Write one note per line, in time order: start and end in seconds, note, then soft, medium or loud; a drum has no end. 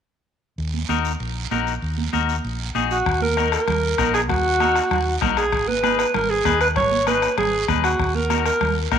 0.58 0.83 D#2 medium
0.58 long guiro medium
0.74 high conga medium
0.89 1.14 D#2 medium
0.89 1.11 D#4 medium
0.89 1.11 F#4 medium
0.89 1.11 A#4 medium
0.89 high conga medium
0.89 short guiro medium
1.05 short guiro medium
1.20 1.45 A#1 medium
1.20 long guiro medium
1.51 1.76 A#1 medium
1.51 1.73 D#4 medium
1.51 1.73 F#4 medium
1.51 1.73 A#4 medium
1.51 high conga medium
1.51 short guiro medium
1.67 short guiro medium
1.82 2.07 D#2 medium
1.82 long guiro medium
1.98 high conga medium
2.13 2.38 D#2 medium
2.13 2.35 D#4 medium
2.13 2.35 F#4 medium
2.13 2.35 A#4 medium
2.13 high conga medium
2.13 short guiro medium
2.29 short guiro medium
2.44 2.69 A#1 medium
2.44 long guiro medium
2.75 3.00 A#1 medium
2.75 2.97 D#4 medium
2.75 2.97 F#4 medium
2.75 2.97 G#4 medium
2.75 high conga medium
2.75 short guiro medium
2.91 3.20 F#4 medium
2.91 short guiro medium
3.06 3.56 D#2 medium
3.06 bombo low medium
3.06 bombo rim medium
3.06 long guiro medium
3.21 3.51 A#4 medium
3.21 high conga medium
3.37 3.59 D#4 medium
3.37 3.59 F#4 medium
3.37 3.59 A#4 medium
3.37 bombo rim medium
3.37 high conga medium
3.37 short guiro medium
3.52 4.11 A#4 medium
3.52 bombo rim medium
3.52 short guiro medium
3.68 3.93 D#2 loud
3.68 bombo rim medium
3.68 low conga medium
3.68 long guiro medium
3.98 4.30 A#1 medium
3.98 4.20 D#4 medium
3.98 4.20 F#4 medium
3.98 4.21 A#4 medium
3.98 bombo low medium
3.98 bombo rim medium
3.98 high conga medium
3.98 short guiro medium
4.14 4.21 G#4 medium
4.14 bombo rim medium
4.14 short guiro medium
4.29 4.79 D#2 medium
4.29 5.18 F#4 medium
4.29 bombo low medium
4.29 bombo rim medium
4.29 low conga medium
4.29 long guiro medium
4.60 4.82 D#4 medium
4.60 4.82 F#4 medium
4.60 4.83 A#4 medium
4.60 bombo rim medium
4.60 high conga medium
4.60 short guiro medium
4.76 bombo rim medium
4.76 short guiro medium
4.91 5.16 D#2 loud
4.91 bombo rim medium
4.91 low conga medium
4.91 long guiro medium
5.21 5.53 A#1 medium
5.21 5.43 D#4 medium
5.21 5.44 F#4 medium
5.21 5.44 A#4 medium
5.21 bombo low medium
5.21 bombo rim medium
5.21 high conga medium
5.21 low conga medium
5.21 short guiro medium
5.37 5.69 G#4 medium
5.37 bombo rim medium
5.37 short guiro medium
5.52 6.02 G#1 medium
5.52 bombo low medium
5.52 bombo rim medium
5.52 long guiro medium
5.68 5.99 B4 loud
5.68 high conga medium
5.83 6.05 D#4 medium
5.83 6.05 G#4 medium
5.83 6.05 B4 medium
5.83 bombo rim medium
5.83 high conga medium
5.83 short guiro medium
5.99 6.16 B4 medium
5.99 bombo rim medium
5.99 short guiro medium
6.14 6.39 G#1 medium
6.14 6.32 A#4 medium
6.14 bombo rim medium
6.14 low conga medium
6.14 long guiro medium
6.30 6.61 G#4 medium
6.45 6.78 D#2 medium
6.45 6.67 D#4 medium
6.45 6.67 G#4 medium
6.45 6.67 B4 medium
6.45 bombo low medium
6.45 bombo rim medium
6.45 high conga medium
6.45 short guiro medium
6.61 6.68 B4 medium
6.61 bombo rim medium
6.61 short guiro medium
6.76 7.25 G#1 medium
6.76 7.05 C#5 medium
6.76 bombo low medium
6.76 bombo rim medium
6.76 low conga medium
6.76 long guiro medium
6.92 high conga medium
7.07 7.28 D#4 medium
7.07 7.29 G#4 medium
7.07 7.36 B4 medium
7.07 7.29 B4 medium
7.07 bombo rim medium
7.07 high conga medium
7.07 short guiro medium
7.22 bombo rim medium
7.22 short guiro medium
7.38 7.62 G#1 loud
7.38 7.67 G#4 medium
7.38 bombo rim medium
7.38 low conga medium
7.38 long guiro medium
7.68 7.93 D#2 medium
7.68 7.90 D#4 medium
7.68 7.90 G#4 medium
7.68 7.90 B4 medium
7.68 bombo low medium
7.68 bombo rim medium
7.68 high conga medium
7.68 low conga medium
7.68 short guiro medium
7.84 8.17 F#4 medium
7.84 bombo rim medium
7.84 short guiro medium
7.99 8.49 D#2 medium
7.99 bombo low medium
7.99 bombo rim medium
7.99 long guiro medium
8.15 8.45 A#4 medium
8.15 high conga medium
8.30 8.52 D#4 medium
8.30 8.52 F#4 medium
8.30 8.52 A#4 medium
8.30 bombo rim medium
8.30 high conga medium
8.30 short guiro medium
8.46 8.78 A#4 medium
8.46 bombo rim medium
8.46 short guiro medium
8.61 8.86 D#2 loud
8.61 bombo rim medium
8.61 low conga medium
8.61 long guiro medium
8.91 8.99 A#1 medium
8.91 8.99 D#4 medium
8.91 8.99 F#4 medium
8.91 8.99 A#4 medium
8.91 bombo low medium
8.91 bombo rim medium
8.91 high conga medium
8.91 short guiro medium